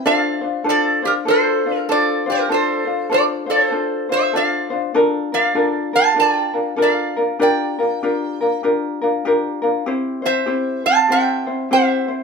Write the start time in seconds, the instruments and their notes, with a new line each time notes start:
0.06 ukulele D4 F4 A4 C5, resonator guitar played with a steel bar D5 F5
0.41 ukulele D4 F4 C5
0.64 ukulele D4 F4 A4 C5
0.69 resonator guitar played with a steel bar A4 D5
1.02 ukulele D4 F4 C5, resonator guitar played with a steel bar G4
1.07 resonator guitar played with a steel bar A#4
1.25 ukulele D4 F4 A4 C5, resonator guitar played with a steel bar A4
1.30 resonator guitar played with a steel bar C5
1.66 ukulele D4 F4 C5
1.77 resonator guitar played with a steel bar A#4
1.89 ukulele D4 F4 A4 C5, resonator guitar played with a steel bar A4 D5
2.26 ukulele D4 F4 C5, resonator guitar played with a steel bar G4
2.32 resonator guitar played with a steel bar A#4
2.49 ukulele D4 F4 A4 C5, resonator guitar played with a steel bar A4
2.54 resonator guitar played with a steel bar C5
2.85 ukulele D4 F4 C5
3.10 ukulele D4 F4 A4 C5, resonator guitar played with a steel bar A4
3.14 resonator guitar played with a steel bar D5
3.46 ukulele D4 F4 C5, resonator guitar played with a steel bar A4
3.51 resonator guitar played with a steel bar C5
3.71 ukulele D4 F4 A4 C5
4.09 ukulele D4 F4 C5, resonator guitar played with a steel bar C5
4.13 resonator guitar played with a steel bar E5
4.33 ukulele D4 F4 A4 C5, resonator guitar played with a steel bar D5 F5
4.70 ukulele D4 F4 C5
4.94 ukulele D4 F4 A4 A#4
5.32 ukulele D4 F4 A#4, resonator guitar played with a steel bar D5 F5
5.55 ukulele D4 F4 A4 A#4
5.93 ukulele D4 F4 A#4, resonator guitar played with a steel bar F5 A5
6.14 ukulele D4 F4 A4 A#4
6.20 resonator guitar played with a steel bar D5 G5
6.53 ukulele D4 F4 A#4
6.76 ukulele D4 F4 A4 A#4
6.82 resonator guitar played with a steel bar D5 F5
7.16 ukulele D4 F4 A#4
7.39 ukulele D4 F4 G4 A#4, resonator guitar played with a steel bar D5 G5
7.79 ukulele D4 F4 A#4
8.03 ukulele D4 F4 G4 A#4
8.41 ukulele D4 F4 A#4
8.63 ukulele D4 F4 G4 A#4
9.01 ukulele D4 F4 A#4
9.25 ukulele D4 F4 G4 A#4
9.62 ukulele D4 F4 A#4
9.86 ukulele C4 E4 G4 C5
10.22 ukulele C4 E4 C5, resonator guitar played with a steel bar C5
10.26 resonator guitar played with a steel bar E5
10.46 ukulele C4 E4 G4 C5
10.84 ukulele C4 C5, resonator guitar played with a steel bar F5 A5
11.08 ukulele C4 E4 G4 C5, resonator guitar played with a steel bar G5
11.13 resonator guitar played with a steel bar E5
11.47 ukulele C4 E4 C5
11.71 ukulele C4 E4 G4 C5, resonator guitar played with a steel bar C5 E5
12.08 ukulele C4 E4 C5